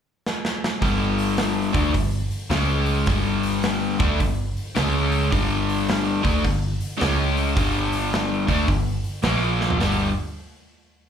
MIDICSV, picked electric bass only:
0, 0, Header, 1, 2, 480
1, 0, Start_track
1, 0, Key_signature, -2, "minor"
1, 0, Tempo, 560748
1, 701, Time_signature, 4, 2, 24, 8
1, 9496, End_track
2, 0, Start_track
2, 0, Title_t, "Picked electric bass"
2, 0, Program_c, 0, 34
2, 701, Note_on_c, 0, 31, 82
2, 1457, Note_off_c, 0, 31, 0
2, 1496, Note_on_c, 0, 38, 96
2, 1654, Note_off_c, 0, 38, 0
2, 1666, Note_on_c, 0, 31, 81
2, 1952, Note_off_c, 0, 31, 0
2, 2140, Note_on_c, 0, 37, 100
2, 2590, Note_off_c, 0, 37, 0
2, 2634, Note_on_c, 0, 31, 85
2, 3387, Note_off_c, 0, 31, 0
2, 3428, Note_on_c, 0, 38, 99
2, 3583, Note_off_c, 0, 38, 0
2, 3596, Note_on_c, 0, 31, 87
2, 3880, Note_off_c, 0, 31, 0
2, 4091, Note_on_c, 0, 37, 90
2, 4528, Note_off_c, 0, 37, 0
2, 4558, Note_on_c, 0, 31, 81
2, 5310, Note_off_c, 0, 31, 0
2, 5354, Note_on_c, 0, 38, 98
2, 5507, Note_off_c, 0, 38, 0
2, 5518, Note_on_c, 0, 31, 88
2, 5802, Note_off_c, 0, 31, 0
2, 6006, Note_on_c, 0, 37, 95
2, 6446, Note_off_c, 0, 37, 0
2, 6479, Note_on_c, 0, 31, 85
2, 7228, Note_off_c, 0, 31, 0
2, 7264, Note_on_c, 0, 38, 90
2, 7420, Note_off_c, 0, 38, 0
2, 7435, Note_on_c, 0, 31, 86
2, 7718, Note_off_c, 0, 31, 0
2, 7906, Note_on_c, 0, 34, 105
2, 8352, Note_off_c, 0, 34, 0
2, 8385, Note_on_c, 0, 31, 83
2, 8671, Note_off_c, 0, 31, 0
2, 9496, End_track
0, 0, End_of_file